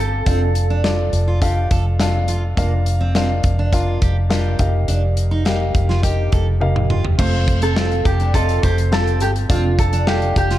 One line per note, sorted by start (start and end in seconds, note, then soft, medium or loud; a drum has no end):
0.00 0.25 G1 medium
0.00 0.29 C4 medium
0.00 0.26 F4 medium
0.00 0.27 A4 medium
0.00 1.09 A4 medium
0.00 0.27 F5 medium
0.26 1.09 F1 loud
0.26 0.40 C4 medium
0.26 0.72 D4 medium
0.26 0.72 F4 medium
0.26 0.72 A4 medium
0.26 0.72 F5 medium
0.26 kick medium
0.26 closed hi-hat medium
0.55 closed hi-hat medium
0.70 0.83 D4 medium
0.83 1.30 D4 medium
0.83 0.98 D4 medium
0.83 1.30 F4 medium
0.83 1.30 A4 medium
0.83 1.30 D5 medium
0.83 snare medium
0.83 closed hi-hat medium
1.13 1.67 F1 medium
1.13 closed hi-hat medium
1.28 1.41 F4 medium
1.41 1.87 D4 medium
1.41 1.87 F4 medium
1.41 1.69 G4 medium
1.41 1.88 A4 medium
1.41 1.88 F5 medium
1.41 kick medium
1.41 closed hi-hat medium
1.71 2.53 F1 medium
1.71 1.85 A4 medium
1.71 kick medium
1.71 closed hi-hat medium
1.99 2.45 D4 medium
1.99 2.45 F4 medium
1.99 2.46 A4 medium
1.99 2.46 F5 medium
1.99 snare medium
1.99 closed hi-hat medium
2.28 2.42 F4 medium
2.28 closed hi-hat medium
2.57 3.40 F1 loud
2.57 2.71 A#3 loud
2.57 3.03 D4 medium
2.57 3.03 F4 medium
2.57 3.03 A#4 medium
2.57 3.03 F5 medium
2.57 kick medium
2.57 closed hi-hat medium
2.86 closed hi-hat medium
3.01 3.14 C4 medium
3.15 3.29 C4 medium
3.15 3.61 D4 medium
3.15 3.61 F4 medium
3.15 3.61 A#4 medium
3.15 3.61 F5 medium
3.15 snare medium
3.15 closed hi-hat medium
3.44 3.98 F1 medium
3.44 kick medium
3.44 closed hi-hat medium
3.59 3.72 D4 medium
3.72 4.18 D4 medium
3.72 4.18 F4 medium
3.72 4.00 F4 medium
3.72 4.19 A#4 medium
3.72 4.19 F5 medium
3.72 kick medium
3.72 closed hi-hat medium
4.02 4.55 F1 medium
4.02 4.15 G4 medium
4.02 kick medium
4.02 closed hi-hat medium
4.29 4.59 D4 medium
4.29 4.59 F4 medium
4.29 4.71 G4 medium
4.29 4.58 A#4 medium
4.29 4.59 F5 medium
4.29 snare loud
4.29 closed hi-hat medium
4.59 4.86 F1 medium
4.59 5.28 D#4 medium
4.59 5.29 G4 medium
4.59 5.29 A#4 medium
4.59 5.29 F5 medium
4.59 kick medium
4.59 closed hi-hat medium
4.88 5.71 F1 medium
4.88 5.02 D4 medium
4.88 closed hi-hat medium
5.17 closed hi-hat medium
5.31 5.44 D#4 medium
5.45 5.91 D#4 medium
5.45 5.59 D#4 medium
5.45 5.91 G4 medium
5.45 5.91 A#4 medium
5.45 5.92 F5 medium
5.45 snare medium
5.45 closed hi-hat medium
5.75 6.28 F1 medium
5.75 kick medium
5.75 closed hi-hat medium
5.89 6.03 F4 medium
5.89 snare soft
6.02 6.49 D#4 medium
6.02 6.49 G4 medium
6.02 6.31 G4 medium
6.02 6.49 A#4 medium
6.02 6.49 G5 medium
6.02 kick medium
6.02 closed hi-hat loud
6.32 7.15 F1 medium
6.32 6.46 A4 medium
6.32 kick medium
6.32 closed hi-hat medium
6.60 7.06 D#4 medium
6.60 7.06 G4 medium
6.60 7.07 A#4 medium
6.60 7.07 F5 medium
6.60 high tom soft
6.76 mid tom medium
6.90 7.04 F4 medium
6.90 mid tom medium
7.04 floor tom medium
7.18 8.01 F1 loud
7.18 7.33 A3 loud
7.18 7.64 C4 medium
7.18 7.64 F4 medium
7.18 7.64 A4 medium
7.18 7.59 C5 medium
7.18 7.64 F5 medium
7.18 kick medium
7.18 crash medium
7.48 kick medium
7.48 closed hi-hat medium
7.62 7.75 C4 medium
7.62 8.05 A4 medium
7.62 closed hi-hat soft
7.76 8.22 C4 medium
7.76 7.90 C4 medium
7.76 8.22 F4 medium
7.76 8.22 A4 medium
7.76 8.22 F5 medium
7.76 snare loud
7.91 closed hi-hat soft
8.05 8.59 F1 medium
8.05 8.32 G4 medium
8.05 kick medium
8.05 closed hi-hat medium
8.20 8.34 D4 medium
8.20 closed hi-hat soft
8.34 8.80 C4 medium
8.34 8.80 F4 medium
8.34 8.62 F4 medium
8.34 8.80 A4 medium
8.34 8.61 A4 medium
8.34 8.80 D#5 medium
8.34 kick medium
8.34 closed hi-hat medium
8.49 closed hi-hat soft
8.63 9.21 F1 medium
8.63 8.77 G4 medium
8.63 8.93 C5 medium
8.63 kick medium
8.63 closed hi-hat medium
8.78 closed hi-hat soft
8.91 9.37 C4 medium
8.91 9.37 F4 medium
8.91 9.33 G4 medium
8.91 9.38 A4 medium
8.91 9.19 A4 medium
8.91 9.38 F5 medium
8.91 snare loud
9.07 closed hi-hat soft
9.20 9.48 G1 medium
9.20 9.29 G4 medium
9.20 closed hi-hat medium
9.36 closed hi-hat soft
9.49 10.32 F1 loud
9.49 9.63 C4 medium
9.49 9.95 D4 medium
9.49 9.95 F4 medium
9.49 9.77 F4 medium
9.49 9.95 A4 medium
9.49 9.95 F5 medium
9.49 kick loud
9.49 closed hi-hat medium
9.79 10.06 A4 medium
9.79 kick medium
9.79 closed hi-hat medium
9.93 10.06 D4 medium
9.93 closed hi-hat soft
10.07 10.53 D4 medium
10.07 10.21 D4 medium
10.07 10.53 F4 medium
10.07 10.36 G4 medium
10.07 10.53 A4 medium
10.07 10.53 F5 medium
10.07 snare loud
10.22 closed hi-hat soft
10.36 10.59 F1 medium
10.36 10.59 G4 medium
10.36 kick medium
10.36 closed hi-hat medium
10.51 10.59 F4 medium
10.51 snare soft
10.51 closed hi-hat soft